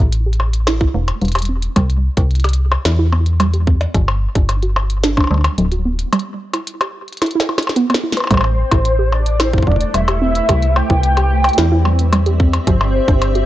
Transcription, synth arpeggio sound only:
0.26 0.35 G4 medium
0.67 0.76 E4 loud
0.81 0.94 E4 loud
0.94 1.03 A3 medium
1.22 1.30 G3 loud
1.35 1.44 G4 medium
1.49 1.58 C4 medium
1.76 1.85 G3 loud
2.17 2.22 E4 medium
2.44 2.53 G4 medium
2.85 2.94 E4 loud
2.99 3.12 E4 loud
3.12 3.21 B3 medium
3.40 3.48 G3 loud
3.54 3.62 G4 medium
3.67 3.76 C4 medium
3.94 4.03 F#3 loud
4.35 4.41 D4 medium
4.63 4.71 F#4 medium
5.04 5.12 D4 loud
5.17 5.30 D4 medium
5.31 5.39 G3 medium
5.58 5.67 F#3 loud
5.72 5.80 F#4 medium
5.85 5.94 B3 medium
6.13 6.21 G3 loud
6.53 6.59 E4 medium
6.81 6.89 G4 medium
7.22 7.30 E4 loud
7.35 7.48 E4 loud
7.49 7.62 E4 medium
7.76 7.85 B3 loud
7.90 7.98 B3 medium
8.04 8.12 E4 medium
8.17 8.22 B4 medium
8.31 8.39 G3 loud
8.72 8.77 E4 medium
8.99 9.08 G4 medium
9.40 9.48 E4 loud
9.53 9.66 E4 loud
9.67 9.76 G3 medium
9.94 10.03 G3 medium
10.08 10.17 G4 medium
10.22 10.30 C4 medium
10.49 10.58 G3 loud
10.90 10.95 E4 medium
11.17 11.26 G4 medium
11.58 11.67 E4 loud
11.72 11.85 E4 loud
11.85 11.94 G3 medium
12.13 12.21 G3 loud
12.26 12.35 G4 medium
12.40 12.48 C4 medium
12.67 12.76 F#3 loud
13.08 13.13 D4 medium
13.35 13.44 F#4 medium

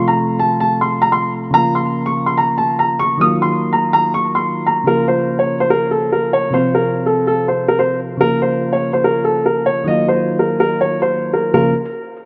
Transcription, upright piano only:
0.08 0.37 A#5 medium
0.39 0.58 A5 medium
0.60 0.79 A5 medium
0.81 1.00 C6 medium
1.02 1.11 A#5 medium
1.12 1.31 C6 medium
1.54 1.72 A#5 loud
1.75 2.04 C6 medium
2.06 2.24 C#6 medium
2.26 2.36 C6 medium
2.38 2.56 A#5 medium
2.58 2.76 A5 medium
2.79 2.98 A#5 medium
2.99 3.18 C#6 medium
3.21 3.39 D#6 medium
3.42 3.71 C6 medium
3.73 3.91 A#5 medium
3.93 4.12 A#5 medium
4.14 4.33 C#6 medium
4.35 4.64 C6 medium
4.67 4.85 A#5 medium
4.87 5.06 A#4 medium
5.08 5.37 C5 medium
5.39 5.58 C#5 medium
5.60 5.70 C5 medium
5.70 5.89 A#4 medium
5.91 6.10 A4 medium
6.12 6.31 A#4 medium
6.33 6.52 C#5 medium
6.54 6.72 C5 medium
6.75 7.04 A#4 medium
7.06 7.25 A4 medium
7.27 7.46 A4 medium
7.48 7.66 C5 medium
7.68 7.78 A#4 medium
7.79 7.97 C5 medium
8.21 8.39 A#4 loud
8.42 8.71 C5 medium
8.73 8.91 C#5 medium
8.93 9.03 C5 medium
9.04 9.23 A#4 medium
9.24 9.43 A4 medium
9.46 9.64 A#4 medium
9.66 9.85 C#5 medium
9.88 10.06 D#5 medium
10.08 10.38 C5 medium
10.39 10.58 A#4 medium
10.60 10.79 A#4 medium
10.81 10.99 C#5 medium
11.02 11.31 C5 medium
11.33 11.52 A#4 medium
11.54 11.73 A#4 medium

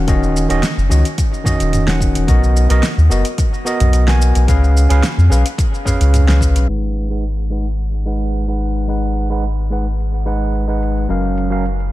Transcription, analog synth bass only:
0.08 0.47 D#1 medium
0.50 0.61 D#1 medium
0.77 0.89 F#1 loud
0.91 1.03 C#2 medium
1.60 2.12 D#1 medium
2.15 2.26 D#1 medium
2.28 2.67 B1 medium
2.70 2.81 B1 medium
2.98 3.09 D#2 loud
3.11 3.23 F#1 medium
3.80 4.32 B1 medium
4.36 4.47 B1 medium
4.48 4.87 C#2 medium
4.90 5.01 C#2 medium
5.18 5.29 F2 loud
5.31 5.43 B1 medium
6.00 6.27 C#2 medium
6.28 6.57 C#2 medium
6.56 6.67 B1 medium
6.69 11.06 G#1 medium
11.09 11.92 F#1 medium

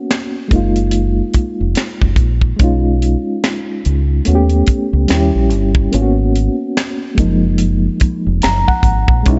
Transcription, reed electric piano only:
0.00 0.49 A#3 medium
0.00 0.51 B3 medium
0.00 0.52 C#4 medium
0.00 0.52 F#4 medium
0.48 2.54 G#3 medium
0.48 2.55 A#3 medium
0.53 2.57 D#4 medium
0.53 2.58 F4 medium
2.56 4.21 G#3 medium
2.56 4.23 C#4 medium
2.61 4.24 D#4 medium
2.61 4.25 F4 medium
4.25 5.09 A3 medium
4.25 5.09 B3 medium
4.25 5.08 C#4 medium
4.25 4.35 F#4 medium
4.35 5.10 G4 medium
5.08 5.92 G3 medium
5.08 5.93 C#4 medium
5.08 5.93 E4 medium
5.08 5.94 G4 medium
5.92 7.16 A#3 medium
5.92 7.18 B3 medium
5.92 7.18 C#4 medium
5.92 6.02 F4 medium
6.02 7.22 F#4 medium
7.15 9.21 G#3 medium
7.15 9.22 A#3 medium
7.20 9.24 F3 medium
7.20 9.23 D#4 medium
8.43 8.66 A#5 medium
8.68 9.23 F#5 medium
9.23 9.39 G#3 medium
9.23 9.39 C#4 medium
9.28 9.39 D#4 medium
9.28 9.36 E4 medium

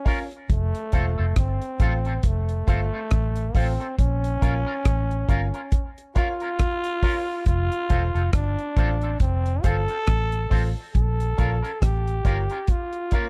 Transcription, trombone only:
0.00 0.28 C#4 medium
0.52 1.39 A3 medium
1.38 2.28 C4 medium
2.26 2.69 A3 medium
2.70 3.58 A3 loud
3.57 3.98 C4 medium
3.99 5.88 C#4 loud
6.16 7.43 F4 loud
7.48 8.30 F4 loud
8.34 9.17 D4 medium
9.21 9.66 C4 loud
9.65 10.71 A4 loud
10.95 11.84 A4 loud
11.83 12.72 G4 medium
12.71 13.16 F4 medium
13.15 13.29 A#3 medium

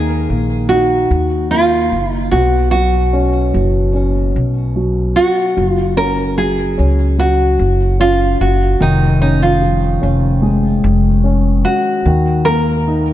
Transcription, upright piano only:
0.00 2.28 D#3 soft
0.00 0.27 A#3 soft
0.00 0.68 D#4 soft
0.29 1.50 A#3 soft
0.70 2.28 D#4 soft
1.51 2.30 A#3 soft
2.32 5.53 B2 medium
2.73 3.52 F#3 soft
3.13 3.92 C#4 soft
3.54 4.74 F#3 soft
3.94 5.52 C#4 soft
4.76 5.54 F#3 soft
5.57 6.36 F#3 medium
5.97 6.76 C#4 soft
6.38 7.17 F#3 soft
6.78 7.98 C#4 soft
7.18 8.77 F#3 soft
8.00 8.78 C#4 soft
8.80 12.01 D#3 medium
9.21 10.00 C#4 soft
9.62 11.20 F3 soft
10.01 11.22 C#4 soft
10.42 12.01 G#3 soft
11.24 12.03 C#4 soft
12.06 13.13 D#3 medium
12.46 13.13 A#3 soft
12.88 13.13 D#4 soft

